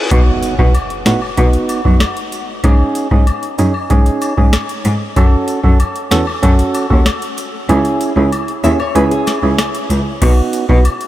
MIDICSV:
0, 0, Header, 1, 7, 480
1, 0, Start_track
1, 0, Tempo, 631579
1, 86, Time_signature, 4, 2, 24, 8
1, 8418, End_track
2, 0, Start_track
2, 0, Title_t, "Nylon-string guitar"
2, 0, Program_c, 0, 24
2, 6565, Note_on_c, 0, 76, 81
2, 6679, Note_off_c, 0, 76, 0
2, 6685, Note_on_c, 0, 73, 88
2, 6799, Note_off_c, 0, 73, 0
2, 6806, Note_on_c, 0, 71, 83
2, 6920, Note_off_c, 0, 71, 0
2, 6925, Note_on_c, 0, 68, 84
2, 7615, Note_off_c, 0, 68, 0
2, 8418, End_track
3, 0, Start_track
3, 0, Title_t, "Synth stab"
3, 0, Program_c, 1, 62
3, 84, Note_on_c, 1, 59, 99
3, 86, Note_on_c, 1, 63, 83
3, 88, Note_on_c, 1, 66, 105
3, 416, Note_off_c, 1, 59, 0
3, 417, Note_off_c, 1, 63, 0
3, 418, Note_off_c, 1, 66, 0
3, 445, Note_on_c, 1, 59, 76
3, 447, Note_on_c, 1, 63, 69
3, 449, Note_on_c, 1, 66, 84
3, 558, Note_off_c, 1, 59, 0
3, 559, Note_off_c, 1, 63, 0
3, 560, Note_off_c, 1, 66, 0
3, 804, Note_on_c, 1, 59, 75
3, 807, Note_on_c, 1, 63, 73
3, 810, Note_on_c, 1, 66, 90
3, 917, Note_off_c, 1, 59, 0
3, 919, Note_off_c, 1, 63, 0
3, 920, Note_off_c, 1, 66, 0
3, 1044, Note_on_c, 1, 59, 92
3, 1047, Note_on_c, 1, 63, 86
3, 1049, Note_on_c, 1, 66, 102
3, 1376, Note_off_c, 1, 59, 0
3, 1377, Note_off_c, 1, 63, 0
3, 1379, Note_off_c, 1, 66, 0
3, 1406, Note_on_c, 1, 59, 79
3, 1408, Note_on_c, 1, 63, 70
3, 1410, Note_on_c, 1, 66, 85
3, 1518, Note_off_c, 1, 59, 0
3, 1519, Note_off_c, 1, 63, 0
3, 1520, Note_off_c, 1, 66, 0
3, 2005, Note_on_c, 1, 61, 99
3, 2007, Note_on_c, 1, 63, 86
3, 2010, Note_on_c, 1, 68, 102
3, 2337, Note_off_c, 1, 61, 0
3, 2338, Note_off_c, 1, 63, 0
3, 2339, Note_off_c, 1, 68, 0
3, 2365, Note_on_c, 1, 61, 80
3, 2367, Note_on_c, 1, 63, 71
3, 2370, Note_on_c, 1, 68, 87
3, 2478, Note_off_c, 1, 61, 0
3, 2479, Note_off_c, 1, 63, 0
3, 2480, Note_off_c, 1, 68, 0
3, 2724, Note_on_c, 1, 61, 83
3, 2726, Note_on_c, 1, 63, 73
3, 2729, Note_on_c, 1, 68, 86
3, 2837, Note_off_c, 1, 61, 0
3, 2838, Note_off_c, 1, 63, 0
3, 2840, Note_off_c, 1, 68, 0
3, 2964, Note_on_c, 1, 61, 94
3, 2965, Note_on_c, 1, 63, 91
3, 2968, Note_on_c, 1, 68, 106
3, 3296, Note_off_c, 1, 61, 0
3, 3296, Note_off_c, 1, 63, 0
3, 3298, Note_off_c, 1, 68, 0
3, 3324, Note_on_c, 1, 61, 76
3, 3326, Note_on_c, 1, 63, 71
3, 3328, Note_on_c, 1, 68, 87
3, 3437, Note_off_c, 1, 61, 0
3, 3438, Note_off_c, 1, 63, 0
3, 3439, Note_off_c, 1, 68, 0
3, 3924, Note_on_c, 1, 61, 94
3, 3927, Note_on_c, 1, 66, 85
3, 3928, Note_on_c, 1, 69, 103
3, 4256, Note_off_c, 1, 61, 0
3, 4257, Note_off_c, 1, 66, 0
3, 4258, Note_off_c, 1, 69, 0
3, 4283, Note_on_c, 1, 61, 78
3, 4285, Note_on_c, 1, 66, 71
3, 4287, Note_on_c, 1, 69, 85
3, 4397, Note_off_c, 1, 61, 0
3, 4398, Note_off_c, 1, 66, 0
3, 4399, Note_off_c, 1, 69, 0
3, 4644, Note_on_c, 1, 61, 78
3, 4646, Note_on_c, 1, 66, 72
3, 4648, Note_on_c, 1, 69, 88
3, 4757, Note_off_c, 1, 61, 0
3, 4758, Note_off_c, 1, 66, 0
3, 4759, Note_off_c, 1, 69, 0
3, 4883, Note_on_c, 1, 61, 93
3, 4886, Note_on_c, 1, 66, 88
3, 4888, Note_on_c, 1, 69, 105
3, 5215, Note_off_c, 1, 61, 0
3, 5217, Note_off_c, 1, 66, 0
3, 5218, Note_off_c, 1, 69, 0
3, 5244, Note_on_c, 1, 61, 79
3, 5245, Note_on_c, 1, 66, 70
3, 5248, Note_on_c, 1, 69, 85
3, 5357, Note_off_c, 1, 61, 0
3, 5358, Note_off_c, 1, 66, 0
3, 5359, Note_off_c, 1, 69, 0
3, 5845, Note_on_c, 1, 61, 92
3, 5847, Note_on_c, 1, 64, 89
3, 5850, Note_on_c, 1, 68, 105
3, 6176, Note_off_c, 1, 61, 0
3, 6178, Note_off_c, 1, 64, 0
3, 6179, Note_off_c, 1, 68, 0
3, 6205, Note_on_c, 1, 61, 81
3, 6208, Note_on_c, 1, 64, 72
3, 6209, Note_on_c, 1, 68, 88
3, 6318, Note_off_c, 1, 61, 0
3, 6319, Note_off_c, 1, 64, 0
3, 6320, Note_off_c, 1, 68, 0
3, 6564, Note_on_c, 1, 61, 80
3, 6566, Note_on_c, 1, 64, 76
3, 6569, Note_on_c, 1, 68, 88
3, 6677, Note_off_c, 1, 61, 0
3, 6678, Note_off_c, 1, 64, 0
3, 6680, Note_off_c, 1, 68, 0
3, 6803, Note_on_c, 1, 61, 93
3, 6806, Note_on_c, 1, 64, 87
3, 6808, Note_on_c, 1, 68, 107
3, 7136, Note_off_c, 1, 61, 0
3, 7137, Note_off_c, 1, 64, 0
3, 7138, Note_off_c, 1, 68, 0
3, 7165, Note_on_c, 1, 61, 75
3, 7166, Note_on_c, 1, 64, 72
3, 7169, Note_on_c, 1, 68, 83
3, 7278, Note_off_c, 1, 61, 0
3, 7278, Note_off_c, 1, 64, 0
3, 7280, Note_off_c, 1, 68, 0
3, 7766, Note_on_c, 1, 59, 97
3, 7768, Note_on_c, 1, 63, 87
3, 7770, Note_on_c, 1, 66, 109
3, 8097, Note_off_c, 1, 59, 0
3, 8098, Note_off_c, 1, 63, 0
3, 8099, Note_off_c, 1, 66, 0
3, 8123, Note_on_c, 1, 59, 76
3, 8126, Note_on_c, 1, 63, 70
3, 8128, Note_on_c, 1, 66, 86
3, 8237, Note_off_c, 1, 59, 0
3, 8238, Note_off_c, 1, 63, 0
3, 8239, Note_off_c, 1, 66, 0
3, 8418, End_track
4, 0, Start_track
4, 0, Title_t, "Cello"
4, 0, Program_c, 2, 42
4, 86, Note_on_c, 2, 47, 98
4, 147, Note_off_c, 2, 47, 0
4, 447, Note_on_c, 2, 47, 97
4, 508, Note_off_c, 2, 47, 0
4, 805, Note_on_c, 2, 45, 87
4, 866, Note_off_c, 2, 45, 0
4, 1048, Note_on_c, 2, 47, 103
4, 1109, Note_off_c, 2, 47, 0
4, 1407, Note_on_c, 2, 42, 85
4, 1468, Note_off_c, 2, 42, 0
4, 2005, Note_on_c, 2, 44, 104
4, 2066, Note_off_c, 2, 44, 0
4, 2366, Note_on_c, 2, 44, 101
4, 2426, Note_off_c, 2, 44, 0
4, 2725, Note_on_c, 2, 42, 92
4, 2786, Note_off_c, 2, 42, 0
4, 2968, Note_on_c, 2, 44, 93
4, 3028, Note_off_c, 2, 44, 0
4, 3326, Note_on_c, 2, 44, 88
4, 3387, Note_off_c, 2, 44, 0
4, 3686, Note_on_c, 2, 44, 97
4, 3747, Note_off_c, 2, 44, 0
4, 3925, Note_on_c, 2, 42, 108
4, 3986, Note_off_c, 2, 42, 0
4, 4286, Note_on_c, 2, 42, 97
4, 4347, Note_off_c, 2, 42, 0
4, 4645, Note_on_c, 2, 40, 88
4, 4706, Note_off_c, 2, 40, 0
4, 4888, Note_on_c, 2, 42, 112
4, 4949, Note_off_c, 2, 42, 0
4, 5248, Note_on_c, 2, 39, 92
4, 5308, Note_off_c, 2, 39, 0
4, 5845, Note_on_c, 2, 37, 103
4, 5906, Note_off_c, 2, 37, 0
4, 6206, Note_on_c, 2, 37, 105
4, 6267, Note_off_c, 2, 37, 0
4, 6566, Note_on_c, 2, 39, 97
4, 6627, Note_off_c, 2, 39, 0
4, 6806, Note_on_c, 2, 37, 100
4, 6867, Note_off_c, 2, 37, 0
4, 7166, Note_on_c, 2, 37, 88
4, 7227, Note_off_c, 2, 37, 0
4, 7526, Note_on_c, 2, 37, 87
4, 7587, Note_off_c, 2, 37, 0
4, 7766, Note_on_c, 2, 47, 102
4, 7827, Note_off_c, 2, 47, 0
4, 8126, Note_on_c, 2, 47, 104
4, 8187, Note_off_c, 2, 47, 0
4, 8418, End_track
5, 0, Start_track
5, 0, Title_t, "Impact"
5, 0, Program_c, 3, 103
5, 85, Note_on_c, 3, 60, 85
5, 2005, Note_off_c, 3, 60, 0
5, 8418, End_track
6, 0, Start_track
6, 0, Title_t, "Reverse cymbal"
6, 0, Program_c, 4, 119
6, 0, Note_on_c, 4, 60, 81
6, 85, Note_off_c, 4, 60, 0
6, 8418, End_track
7, 0, Start_track
7, 0, Title_t, "Drums"
7, 85, Note_on_c, 9, 42, 71
7, 85, Note_on_c, 9, 76, 68
7, 86, Note_on_c, 9, 36, 111
7, 161, Note_off_c, 9, 42, 0
7, 161, Note_off_c, 9, 76, 0
7, 162, Note_off_c, 9, 36, 0
7, 324, Note_on_c, 9, 42, 74
7, 327, Note_on_c, 9, 69, 65
7, 400, Note_off_c, 9, 42, 0
7, 403, Note_off_c, 9, 69, 0
7, 446, Note_on_c, 9, 36, 98
7, 522, Note_off_c, 9, 36, 0
7, 566, Note_on_c, 9, 76, 78
7, 567, Note_on_c, 9, 42, 63
7, 642, Note_off_c, 9, 76, 0
7, 643, Note_off_c, 9, 42, 0
7, 686, Note_on_c, 9, 42, 47
7, 762, Note_off_c, 9, 42, 0
7, 805, Note_on_c, 9, 37, 90
7, 805, Note_on_c, 9, 38, 111
7, 805, Note_on_c, 9, 69, 83
7, 806, Note_on_c, 9, 42, 69
7, 881, Note_off_c, 9, 37, 0
7, 881, Note_off_c, 9, 38, 0
7, 881, Note_off_c, 9, 69, 0
7, 882, Note_off_c, 9, 42, 0
7, 924, Note_on_c, 9, 76, 76
7, 1000, Note_off_c, 9, 76, 0
7, 1045, Note_on_c, 9, 42, 77
7, 1048, Note_on_c, 9, 36, 92
7, 1121, Note_off_c, 9, 42, 0
7, 1124, Note_off_c, 9, 36, 0
7, 1165, Note_on_c, 9, 42, 53
7, 1241, Note_off_c, 9, 42, 0
7, 1285, Note_on_c, 9, 42, 69
7, 1285, Note_on_c, 9, 69, 77
7, 1285, Note_on_c, 9, 76, 77
7, 1361, Note_off_c, 9, 42, 0
7, 1361, Note_off_c, 9, 69, 0
7, 1361, Note_off_c, 9, 76, 0
7, 1407, Note_on_c, 9, 36, 86
7, 1483, Note_off_c, 9, 36, 0
7, 1522, Note_on_c, 9, 38, 124
7, 1523, Note_on_c, 9, 37, 97
7, 1525, Note_on_c, 9, 42, 73
7, 1525, Note_on_c, 9, 76, 78
7, 1598, Note_off_c, 9, 38, 0
7, 1599, Note_off_c, 9, 37, 0
7, 1601, Note_off_c, 9, 42, 0
7, 1601, Note_off_c, 9, 76, 0
7, 1647, Note_on_c, 9, 42, 56
7, 1723, Note_off_c, 9, 42, 0
7, 1765, Note_on_c, 9, 42, 74
7, 1766, Note_on_c, 9, 69, 74
7, 1841, Note_off_c, 9, 42, 0
7, 1842, Note_off_c, 9, 69, 0
7, 2004, Note_on_c, 9, 42, 75
7, 2006, Note_on_c, 9, 36, 121
7, 2006, Note_on_c, 9, 76, 73
7, 2080, Note_off_c, 9, 42, 0
7, 2082, Note_off_c, 9, 36, 0
7, 2082, Note_off_c, 9, 76, 0
7, 2243, Note_on_c, 9, 42, 80
7, 2246, Note_on_c, 9, 69, 67
7, 2319, Note_off_c, 9, 42, 0
7, 2322, Note_off_c, 9, 69, 0
7, 2366, Note_on_c, 9, 36, 99
7, 2442, Note_off_c, 9, 36, 0
7, 2484, Note_on_c, 9, 76, 79
7, 2486, Note_on_c, 9, 42, 63
7, 2560, Note_off_c, 9, 76, 0
7, 2562, Note_off_c, 9, 42, 0
7, 2605, Note_on_c, 9, 42, 45
7, 2681, Note_off_c, 9, 42, 0
7, 2724, Note_on_c, 9, 69, 82
7, 2726, Note_on_c, 9, 42, 68
7, 2800, Note_off_c, 9, 69, 0
7, 2802, Note_off_c, 9, 42, 0
7, 2843, Note_on_c, 9, 76, 78
7, 2919, Note_off_c, 9, 76, 0
7, 2965, Note_on_c, 9, 42, 79
7, 2967, Note_on_c, 9, 36, 98
7, 3041, Note_off_c, 9, 42, 0
7, 3043, Note_off_c, 9, 36, 0
7, 3086, Note_on_c, 9, 42, 54
7, 3162, Note_off_c, 9, 42, 0
7, 3204, Note_on_c, 9, 69, 80
7, 3204, Note_on_c, 9, 76, 75
7, 3205, Note_on_c, 9, 42, 74
7, 3280, Note_off_c, 9, 69, 0
7, 3280, Note_off_c, 9, 76, 0
7, 3281, Note_off_c, 9, 42, 0
7, 3327, Note_on_c, 9, 36, 87
7, 3403, Note_off_c, 9, 36, 0
7, 3442, Note_on_c, 9, 37, 99
7, 3442, Note_on_c, 9, 38, 125
7, 3444, Note_on_c, 9, 42, 78
7, 3444, Note_on_c, 9, 76, 76
7, 3518, Note_off_c, 9, 37, 0
7, 3518, Note_off_c, 9, 38, 0
7, 3520, Note_off_c, 9, 42, 0
7, 3520, Note_off_c, 9, 76, 0
7, 3566, Note_on_c, 9, 42, 55
7, 3642, Note_off_c, 9, 42, 0
7, 3684, Note_on_c, 9, 69, 71
7, 3685, Note_on_c, 9, 42, 76
7, 3760, Note_off_c, 9, 69, 0
7, 3761, Note_off_c, 9, 42, 0
7, 3924, Note_on_c, 9, 42, 75
7, 3925, Note_on_c, 9, 36, 124
7, 3925, Note_on_c, 9, 76, 70
7, 4000, Note_off_c, 9, 42, 0
7, 4001, Note_off_c, 9, 36, 0
7, 4001, Note_off_c, 9, 76, 0
7, 4163, Note_on_c, 9, 42, 81
7, 4166, Note_on_c, 9, 69, 69
7, 4239, Note_off_c, 9, 42, 0
7, 4242, Note_off_c, 9, 69, 0
7, 4286, Note_on_c, 9, 36, 98
7, 4362, Note_off_c, 9, 36, 0
7, 4406, Note_on_c, 9, 76, 78
7, 4407, Note_on_c, 9, 42, 64
7, 4482, Note_off_c, 9, 76, 0
7, 4483, Note_off_c, 9, 42, 0
7, 4527, Note_on_c, 9, 42, 47
7, 4603, Note_off_c, 9, 42, 0
7, 4645, Note_on_c, 9, 69, 83
7, 4647, Note_on_c, 9, 37, 88
7, 4647, Note_on_c, 9, 38, 117
7, 4648, Note_on_c, 9, 42, 67
7, 4721, Note_off_c, 9, 69, 0
7, 4723, Note_off_c, 9, 37, 0
7, 4723, Note_off_c, 9, 38, 0
7, 4724, Note_off_c, 9, 42, 0
7, 4765, Note_on_c, 9, 76, 81
7, 4841, Note_off_c, 9, 76, 0
7, 4887, Note_on_c, 9, 42, 77
7, 4889, Note_on_c, 9, 36, 95
7, 4963, Note_off_c, 9, 42, 0
7, 4965, Note_off_c, 9, 36, 0
7, 5008, Note_on_c, 9, 42, 56
7, 5084, Note_off_c, 9, 42, 0
7, 5126, Note_on_c, 9, 69, 75
7, 5126, Note_on_c, 9, 76, 77
7, 5127, Note_on_c, 9, 42, 72
7, 5202, Note_off_c, 9, 69, 0
7, 5202, Note_off_c, 9, 76, 0
7, 5203, Note_off_c, 9, 42, 0
7, 5248, Note_on_c, 9, 36, 83
7, 5324, Note_off_c, 9, 36, 0
7, 5364, Note_on_c, 9, 37, 97
7, 5364, Note_on_c, 9, 38, 120
7, 5366, Note_on_c, 9, 42, 76
7, 5366, Note_on_c, 9, 76, 77
7, 5440, Note_off_c, 9, 37, 0
7, 5440, Note_off_c, 9, 38, 0
7, 5442, Note_off_c, 9, 42, 0
7, 5442, Note_off_c, 9, 76, 0
7, 5488, Note_on_c, 9, 42, 57
7, 5564, Note_off_c, 9, 42, 0
7, 5605, Note_on_c, 9, 69, 75
7, 5608, Note_on_c, 9, 42, 76
7, 5681, Note_off_c, 9, 69, 0
7, 5684, Note_off_c, 9, 42, 0
7, 5846, Note_on_c, 9, 42, 76
7, 5846, Note_on_c, 9, 76, 69
7, 5922, Note_off_c, 9, 42, 0
7, 5922, Note_off_c, 9, 76, 0
7, 5965, Note_on_c, 9, 42, 50
7, 6041, Note_off_c, 9, 42, 0
7, 6085, Note_on_c, 9, 42, 78
7, 6086, Note_on_c, 9, 69, 69
7, 6161, Note_off_c, 9, 42, 0
7, 6162, Note_off_c, 9, 69, 0
7, 6326, Note_on_c, 9, 76, 79
7, 6327, Note_on_c, 9, 42, 63
7, 6402, Note_off_c, 9, 76, 0
7, 6403, Note_off_c, 9, 42, 0
7, 6447, Note_on_c, 9, 42, 46
7, 6523, Note_off_c, 9, 42, 0
7, 6565, Note_on_c, 9, 69, 82
7, 6569, Note_on_c, 9, 42, 72
7, 6641, Note_off_c, 9, 69, 0
7, 6645, Note_off_c, 9, 42, 0
7, 6685, Note_on_c, 9, 76, 81
7, 6761, Note_off_c, 9, 76, 0
7, 6806, Note_on_c, 9, 42, 81
7, 6882, Note_off_c, 9, 42, 0
7, 6927, Note_on_c, 9, 42, 57
7, 7003, Note_off_c, 9, 42, 0
7, 7044, Note_on_c, 9, 69, 80
7, 7044, Note_on_c, 9, 76, 81
7, 7047, Note_on_c, 9, 42, 74
7, 7049, Note_on_c, 9, 38, 62
7, 7120, Note_off_c, 9, 69, 0
7, 7120, Note_off_c, 9, 76, 0
7, 7123, Note_off_c, 9, 42, 0
7, 7125, Note_off_c, 9, 38, 0
7, 7283, Note_on_c, 9, 76, 76
7, 7284, Note_on_c, 9, 37, 104
7, 7284, Note_on_c, 9, 38, 123
7, 7286, Note_on_c, 9, 42, 77
7, 7359, Note_off_c, 9, 76, 0
7, 7360, Note_off_c, 9, 37, 0
7, 7360, Note_off_c, 9, 38, 0
7, 7362, Note_off_c, 9, 42, 0
7, 7407, Note_on_c, 9, 42, 60
7, 7483, Note_off_c, 9, 42, 0
7, 7525, Note_on_c, 9, 69, 77
7, 7526, Note_on_c, 9, 42, 73
7, 7601, Note_off_c, 9, 69, 0
7, 7602, Note_off_c, 9, 42, 0
7, 7765, Note_on_c, 9, 42, 79
7, 7765, Note_on_c, 9, 49, 99
7, 7765, Note_on_c, 9, 76, 72
7, 7766, Note_on_c, 9, 36, 119
7, 7841, Note_off_c, 9, 42, 0
7, 7841, Note_off_c, 9, 49, 0
7, 7841, Note_off_c, 9, 76, 0
7, 7842, Note_off_c, 9, 36, 0
7, 8004, Note_on_c, 9, 42, 83
7, 8006, Note_on_c, 9, 69, 68
7, 8080, Note_off_c, 9, 42, 0
7, 8082, Note_off_c, 9, 69, 0
7, 8126, Note_on_c, 9, 36, 99
7, 8202, Note_off_c, 9, 36, 0
7, 8245, Note_on_c, 9, 76, 84
7, 8246, Note_on_c, 9, 42, 66
7, 8321, Note_off_c, 9, 76, 0
7, 8322, Note_off_c, 9, 42, 0
7, 8365, Note_on_c, 9, 42, 48
7, 8418, Note_off_c, 9, 42, 0
7, 8418, End_track
0, 0, End_of_file